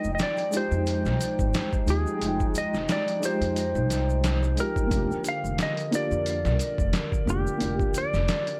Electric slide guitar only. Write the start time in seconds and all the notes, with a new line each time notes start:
Already playing: D#5
0.15 D#5
0.23 D5
0.57 C5
1.90 G#4
2.58 D#5
2.92 D5
3.25 C5
4.60 A#4
5.29 F5
5.63 D#5
5.95 D5
7.30 G4
7.98 D5